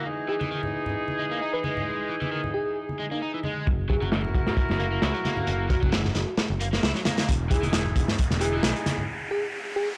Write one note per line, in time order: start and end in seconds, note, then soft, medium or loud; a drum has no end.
0.06 3.65 E3 medium
0.06 3.65 D#4 medium
0.06 3.65 G#4 loud
0.28 0.34 E3 medium
0.28 0.40 G#4 medium
0.41 0.48 E3 medium
0.41 high conga medium
0.51 0.60 D#3 medium
0.63 low conga medium
0.86 low conga medium
1.08 high conga medium
1.19 1.24 G#3 medium
1.31 1.38 A#3 medium
1.41 1.50 D#4 medium
1.53 1.58 E3 medium
1.53 1.64 B4 medium
1.64 2.08 G#3 medium
1.64 high conga medium
1.77 low conga medium
2.09 2.14 E3 medium
2.21 2.29 E3 medium
2.21 high conga medium
2.32 2.40 D#3 medium
2.44 low conga medium
2.54 2.89 G#4 medium
2.89 high conga medium
2.99 3.05 G#3 medium
3.11 3.19 A#3 medium
3.11 3.57 D#4 medium
3.22 3.30 D#4 medium
3.34 3.38 E3 medium
3.44 3.67 G#3 medium
3.44 high conga medium
3.67 3.96 F#1 medium
3.67 kick loud
3.67 closed hi-hat medium
3.67 riser medium
3.89 3.95 F#3 medium
3.89 5.68 E4 medium
3.89 5.68 F#4 medium
3.89 4.01 G#4 medium
3.89 5.68 A#4 medium
3.89 kick medium
3.89 closed hi-hat medium
4.01 4.30 F#1 medium
4.01 4.09 F#3 medium
4.01 closed hi-hat soft
4.01 high conga medium
4.12 4.21 E3 medium
4.12 snare loud
4.12 closed hi-hat medium
4.25 low conga medium
4.35 4.43 F#1 medium
4.35 4.43 F#4 medium
4.35 kick medium
4.35 closed hi-hat medium
4.47 4.54 F#4 medium
4.47 snare medium
4.47 low conga medium
4.57 muted picked electric bass stroke soft
4.57 kick loud
4.57 closed hi-hat medium
4.69 4.98 F#1 medium
4.69 snare soft
4.69 high conga medium
4.80 4.85 A#3 medium
4.80 closed hi-hat medium
4.92 4.99 A#3 medium
5.02 5.11 C#2 medium
5.02 5.11 E4 medium
5.02 snare loud
5.02 closed hi-hat medium
5.14 5.19 F#3 medium
5.14 closed hi-hat soft
5.25 5.69 A#3 medium
5.25 snare soft
5.25 closed hi-hat medium
5.25 high conga medium
5.37 low conga medium
5.47 5.77 F#1 medium
5.47 closed hi-hat medium
5.70 5.75 F#3 medium
5.70 5.77 E4 medium
5.70 6.34 F#4 medium
5.70 5.77 F#4 medium
5.70 5.77 A#4 loud
5.70 kick medium
5.70 closed hi-hat medium
5.82 6.11 F#1 loud
5.82 5.90 F#3 medium
5.82 kick medium
5.82 high conga medium
5.92 6.01 E3 medium
5.92 snare loud
5.92 closed hi-hat medium
6.05 snare soft
6.05 low conga medium
6.15 6.24 F#1 medium
6.15 snare soft
6.15 closed hi-hat medium
6.37 snare loud
6.37 closed hi-hat medium
6.50 6.78 F#1 medium
6.50 high conga medium
6.60 6.66 A#3 medium
6.60 closed hi-hat medium
6.73 6.80 A#3 medium
6.73 snare medium
6.83 6.92 C#2 loud
6.83 6.91 E4 medium
6.83 snare loud
6.83 closed hi-hat medium
6.95 7.00 F#3 medium
6.95 snare soft
7.05 7.28 A#3 medium
7.05 snare loud
7.05 closed hi-hat medium
7.05 high conga medium
7.18 snare loud
7.18 closed hi-hat medium
7.29 7.58 E1 medium
7.29 kick loud
7.29 closed hi-hat loud
7.51 7.56 E3 medium
7.51 8.17 D#4 medium
7.51 8.17 E4 medium
7.51 7.62 G#4 medium
7.51 8.17 G#4 medium
7.51 kick loud
7.51 closed hi-hat medium
7.63 7.91 E1 loud
7.63 7.70 E3 medium
7.63 closed hi-hat soft
7.63 high conga medium
7.73 7.82 D#3 medium
7.73 snare loud
7.73 closed hi-hat medium
7.85 low conga medium
7.96 8.04 E1 medium
7.96 kick medium
7.96 closed hi-hat medium
8.08 snare medium
8.08 low conga medium
8.18 muted picked electric bass stroke soft
8.18 kick loud
8.18 closed hi-hat medium
8.31 8.59 E1 medium
8.31 snare soft
8.31 high conga medium
8.41 8.46 E3 medium
8.41 9.07 D#4 medium
8.41 9.07 E4 medium
8.41 8.53 G#4 medium
8.41 9.07 G#4 medium
8.41 closed hi-hat medium
8.53 8.60 E3 medium
8.63 8.72 B1 loud
8.63 8.72 D#3 medium
8.63 snare loud
8.63 closed hi-hat medium
8.76 closed hi-hat soft
8.86 snare soft
8.86 closed hi-hat medium
8.86 high conga loud
8.98 low conga medium
9.31 9.43 G#4 medium
9.76 9.88 G#4 medium